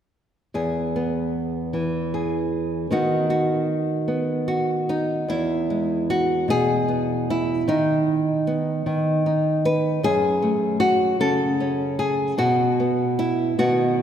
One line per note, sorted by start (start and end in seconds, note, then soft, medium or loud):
0.54 2.91 E2 medium
0.54 2.13 G#4 soft
0.96 2.92 B3 soft
1.73 2.86 E3 medium
2.14 2.87 G#4 soft
2.91 5.23 D#3 medium
2.91 4.07 B3 soft
2.91 4.88 D#4 soft
2.91 3.29 F#4 medium
3.30 4.47 F#4 medium
4.08 5.23 B3 medium
4.48 5.23 F#4 soft
4.89 5.29 D#4 medium
5.28 7.68 E2 medium
5.28 6.09 E4 medium
5.70 7.64 G#3 soft
6.10 6.49 F#4 medium
6.48 7.63 B2 medium
6.48 7.29 G#4 medium
6.88 7.68 B3 soft
7.30 7.69 E4 medium
7.68 8.85 D#3 medium
7.68 9.25 D#4 medium
8.47 9.99 B3 soft
8.86 9.99 D#3 medium
9.26 9.99 D#4 soft
9.65 10.04 B4 medium
10.03 12.33 F#2 medium
10.03 10.79 G#4 medium
10.42 12.33 A3 soft
10.80 11.20 F#4 medium
11.20 12.33 C#3 medium
11.20 11.99 A4 medium
11.60 12.34 C#4 soft
11.99 12.38 G#4 medium
12.38 13.53 B2 medium
12.38 13.18 F#4 medium
12.80 13.59 B3 soft
13.19 13.58 E4 medium
13.58 14.02 B2 medium
13.58 14.02 D#3 soft
13.58 14.02 B3 soft
13.58 14.02 F#4 medium